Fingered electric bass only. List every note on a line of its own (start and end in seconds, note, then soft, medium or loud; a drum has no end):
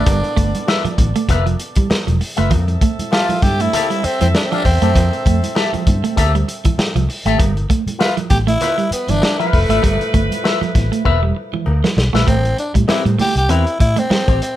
0.07 0.21 G1 loud
0.37 0.51 G1 medium
0.84 muted fingered electric bass stroke soft
0.98 1.12 A1 medium
1.28 1.54 F1 medium
1.90 muted fingered electric bass stroke soft
2.07 2.18 E1 medium
2.38 2.52 F#1 medium
2.51 2.76 F2 loud
2.99 muted fingered electric bass stroke soft
3.42 3.67 G2 medium
4.04 muted fingered electric bass stroke medium
4.22 4.32 F2 medium
4.65 4.79 E2 medium
4.82 4.95 F#2 medium
4.95 5.09 F2 loud
5.26 5.40 F2 medium
5.75 muted fingered electric bass stroke soft
5.87 6.01 G2 medium
6.17 6.42 D2 loud
6.78 muted fingered electric bass stroke soft
6.95 7.06 C2 medium
7.25 7.37 G#1 loud
7.40 7.65 G1 loud
7.86 muted fingered electric bass stroke soft
8.31 8.56 A1 medium
8.91 muted fingered electric bass stroke medium
9.09 9.20 G1 loud
9.53 9.67 F1 medium
9.69 9.80 G#1 medium
9.83 9.97 G1 loud
10.14 10.28 G1 medium
10.62 muted fingered electric bass stroke soft
10.75 10.89 A1 medium
11.05 11.30 E1 medium
11.67 11.81 D2 loud
11.97 12.11 B1 medium
12.14 12.25 A#1 medium
12.75 12.86 A2 medium
12.89 muted fingered electric bass stroke soft
13.06 13.17 A2 loud
13.36 13.47 C2 medium
13.49 13.63 E2 medium
13.81 13.95 A2 loud
14.10 muted fingered electric bass stroke soft
14.28 14.39 A1 medium